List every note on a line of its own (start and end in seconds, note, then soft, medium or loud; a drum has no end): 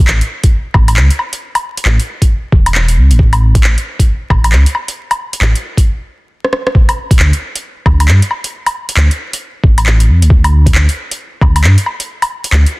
0.07 0.21 A1 loud
0.07 clap loud
0.21 closed hi-hat soft
0.43 kick medium
0.43 closed hi-hat medium
0.74 0.98 A1 medium
0.74 kick loud
0.74 low woodblock medium
0.88 closed hi-hat medium
0.88 low woodblock medium
0.96 1.09 C#2 medium
0.96 clap loud
1.10 closed hi-hat soft
1.19 low woodblock soft
1.33 closed hi-hat medium
1.55 closed hi-hat soft
1.55 low woodblock medium
1.77 closed hi-hat medium
1.85 1.98 A1 medium
1.85 clap loud
2.00 closed hi-hat soft
2.22 kick medium
2.22 closed hi-hat soft
2.52 2.98 E1 medium
2.52 kick loud
2.66 closed hi-hat medium
2.66 low woodblock medium
2.75 clap medium
2.88 closed hi-hat soft
2.97 3.12 C#2 medium
3.11 3.62 A1 loud
3.11 closed hi-hat medium
3.19 kick loud
3.33 closed hi-hat soft
3.33 low woodblock medium
3.55 kick loud
3.55 closed hi-hat medium
3.64 3.76 A1 medium
3.64 clap loud
3.78 closed hi-hat soft
3.99 kick medium
3.99 closed hi-hat medium
4.30 4.54 A1 medium
4.30 kick medium
4.30 low woodblock medium
4.44 closed hi-hat medium
4.44 low woodblock medium
4.52 4.65 C#2 medium
4.52 clap medium
4.66 closed hi-hat soft
4.75 low woodblock soft
4.88 closed hi-hat medium
5.11 closed hi-hat soft
5.11 low woodblock medium
5.33 closed hi-hat medium
5.41 5.54 A1 loud
5.41 clap loud
5.56 closed hi-hat soft
5.77 kick medium
5.77 closed hi-hat medium
6.44 cross-stick medium
6.53 cross-stick medium
6.67 cross-stick medium
6.75 kick loud
6.89 closed hi-hat soft
6.89 low woodblock medium
7.11 kick loud
7.11 closed hi-hat medium
7.19 7.32 D2 medium
7.19 clap loud
7.33 closed hi-hat soft
7.56 closed hi-hat medium
7.86 8.10 D2 medium
7.86 kick loud
7.86 low woodblock medium
8.00 closed hi-hat medium
8.00 low woodblock medium
8.08 8.21 G2 loud
8.08 clap loud
8.22 closed hi-hat soft
8.31 low woodblock soft
8.44 closed hi-hat medium
8.66 closed hi-hat soft
8.66 low woodblock medium
8.89 closed hi-hat medium
8.97 9.09 D2 loud
8.97 clap loud
9.11 closed hi-hat soft
9.33 closed hi-hat medium
9.63 10.10 A1 medium
9.63 kick loud
9.78 closed hi-hat medium
9.78 low woodblock medium
9.86 clap loud
10.00 closed hi-hat soft
10.08 10.24 F2 medium
10.22 10.74 D2 loud
10.22 closed hi-hat medium
10.30 kick loud
10.44 closed hi-hat soft
10.44 low woodblock medium
10.66 kick loud
10.66 closed hi-hat medium
10.75 10.87 D2 loud
10.75 clap loud
10.89 closed hi-hat soft
11.11 closed hi-hat medium
11.41 11.65 D2 medium
11.41 kick loud
11.41 low woodblock medium
11.56 closed hi-hat medium
11.56 low woodblock medium
11.64 11.76 G2 medium
11.64 clap loud
11.78 closed hi-hat soft
11.86 low woodblock soft
12.00 closed hi-hat medium
12.22 closed hi-hat soft
12.22 low woodblock medium
12.44 closed hi-hat medium
12.52 12.65 D2 loud
12.52 clap loud
12.66 closed hi-hat soft